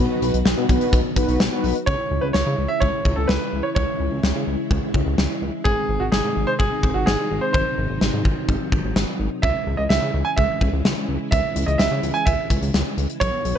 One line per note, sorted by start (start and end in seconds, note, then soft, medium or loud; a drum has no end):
0.00 1.83 D#3 medium
0.00 1.84 F#3 medium
0.00 0.38 B3 medium
0.00 1.84 B3 medium
0.00 0.38 D#4 medium
0.00 0.38 F#4 medium
0.00 1.83 F#4 loud
0.00 0.38 B4 loud
0.00 1.35 D#5 medium
0.22 0.31 B1 loud
0.22 closed hi-hat medium
0.34 0.43 B1 loud
0.34 closed hi-hat medium
0.45 0.55 B1 loud
0.45 snare loud
0.57 0.67 B2 loud
0.57 0.65 B3 medium
0.57 0.65 D#4 medium
0.57 0.65 F#4 medium
0.57 0.65 B4 loud
0.69 0.78 B1 loud
0.69 1.01 B3 medium
0.69 1.01 D#4 medium
0.69 1.01 F#4 medium
0.69 1.01 B4 loud
0.69 kick medium
0.69 closed hi-hat medium
0.81 closed hi-hat medium
0.93 1.02 B1 loud
0.93 kick loud
0.93 closed hi-hat medium
1.16 1.26 B1 loud
1.16 1.40 B3 medium
1.16 1.40 D#4 medium
1.16 1.40 F#4 medium
1.16 1.40 B4 loud
1.16 kick loud
1.16 closed hi-hat medium
1.29 1.38 B1 medium
1.29 closed hi-hat medium
1.40 1.49 B1 loud
1.40 snare loud
1.52 1.76 B3 medium
1.52 1.76 D#4 medium
1.52 1.76 F#4 medium
1.52 1.76 B4 loud
1.64 1.73 B1 medium
1.64 open hi-hat medium
1.75 closed hi-hat medium
1.86 1.96 C#2 loud
1.86 5.62 C#3 medium
1.86 5.62 E3 medium
1.86 7.50 G#3 medium
1.86 5.62 E4 medium
1.86 2.23 C#5 loud
1.86 kick loud
2.11 2.20 C#2 loud
2.21 2.32 C#2 loud
2.21 2.26 B4 medium
2.33 2.44 C#2 loud
2.33 2.67 C#5 medium
2.33 snare loud
2.47 2.56 C#3 loud
2.58 2.67 C#2 loud
2.68 2.81 E5 loud
2.80 2.91 C#2 loud
2.80 3.14 C#5 loud
2.80 kick medium
3.05 3.14 C#2 loud
3.05 kick medium
3.16 3.26 C#2 loud
3.16 3.29 A4 medium
3.28 3.38 C#2 loud
3.28 3.65 B4 medium
3.28 snare loud
3.53 3.62 C#2 loud
3.63 3.68 C#5 medium
3.75 3.85 C#2 loud
3.75 5.13 C#5 medium
3.75 kick loud
4.00 4.09 C#2 loud
4.12 4.21 C#2 loud
4.23 4.33 C#2 medium
4.23 snare loud
4.35 4.45 C#3 loud
4.47 4.56 C#2 loud
4.71 4.80 C#2 loud
4.71 kick medium
4.94 5.03 C#2 loud
4.94 kick loud
5.06 5.15 C#2 loud
5.18 5.27 C#2 loud
5.18 snare loud
5.42 5.51 C#2 loud
5.64 5.74 G#1 loud
5.64 9.40 C3 medium
5.64 9.40 D#3 medium
5.64 9.40 D#4 medium
5.64 6.01 G#4 loud
5.64 kick loud
5.89 5.98 G#1 loud
6.00 6.10 G#1 loud
6.00 6.05 F#4 medium
6.12 6.22 G#1 loud
6.12 6.49 G#4 medium
6.12 snare loud
6.24 6.34 G#2 loud
6.36 6.45 G#1 loud
6.47 6.52 C5 loud
6.59 6.69 G#1 loud
6.59 6.96 G#4 medium
6.59 kick medium
6.83 6.92 G#1 loud
6.83 kick medium
6.94 7.04 G#1 loud
6.94 7.07 F#4 medium
7.06 7.16 G#1 loud
7.06 7.43 G#4 medium
7.06 snare loud
7.31 7.40 G#1 loud
7.41 7.51 C5 medium
7.53 7.63 G#1 loud
7.53 9.41 F#3 medium
7.53 8.91 C5 loud
7.53 kick loud
7.78 7.87 G#1 loud
7.90 7.99 G#1 loud
8.01 8.11 G#1 loud
8.01 snare medium
8.13 8.23 G#2 medium
8.25 8.34 G#1 loud
8.25 kick medium
8.49 8.58 G#1 loud
8.49 kick medium
8.72 8.81 G#1 loud
8.72 kick medium
8.84 8.93 G#1 loud
8.96 9.05 G#1 loud
8.96 snare loud
9.20 9.29 G#1 loud
9.42 9.52 C#2 loud
9.42 13.17 C#3 medium
9.42 13.17 E3 medium
9.42 13.17 G#3 medium
9.42 13.17 E4 medium
9.42 9.79 E5 medium
9.42 kick loud
9.67 9.76 C#2 loud
9.77 9.88 C#2 loud
9.77 9.82 D#5 medium
9.89 10.00 C#2 loud
9.89 10.26 E5 medium
9.89 snare loud
10.02 10.11 C#3 loud
10.14 10.23 C#2 loud
10.25 10.30 G#5 medium
10.36 10.47 C#2 loud
10.36 10.70 E5 medium
10.36 kick medium
10.61 10.70 C#2 loud
10.61 kick loud
10.73 10.82 C#2 loud
10.85 10.94 C#2 loud
10.85 snare loud
11.09 11.18 C#2 loud
11.31 11.41 C#2 loud
11.31 11.68 E5 medium
11.31 kick loud
11.31 closed hi-hat medium
11.56 11.65 C#2 loud
11.56 closed hi-hat medium
11.66 11.77 C#2 loud
11.66 11.79 D#5 medium
11.66 closed hi-hat medium
11.78 11.89 C#2 loud
11.78 12.15 E5 medium
11.78 snare loud
11.78 closed hi-hat medium
11.91 12.00 C#3 loud
12.03 12.12 C#2 loud
12.03 closed hi-hat medium
12.14 12.27 G#5 loud
12.14 closed hi-hat soft
12.26 12.36 C#2 loud
12.26 12.59 E5 medium
12.26 kick medium
12.26 closed hi-hat medium
12.50 12.59 C#2 loud
12.50 kick loud
12.50 closed hi-hat medium
12.62 12.71 C#2 loud
12.62 closed hi-hat medium
12.74 12.83 C#2 loud
12.74 snare loud
12.74 closed hi-hat medium
12.98 13.07 C#2 loud
12.98 closed hi-hat medium
13.10 closed hi-hat medium
13.20 13.30 B1 loud
13.20 13.58 D#3 medium
13.20 13.58 F#3 medium
13.20 13.58 B3 medium
13.20 13.58 F#4 medium
13.20 13.57 C#5 loud
13.20 kick loud
13.20 closed hi-hat medium
13.45 13.54 B1 loud
13.45 closed hi-hat medium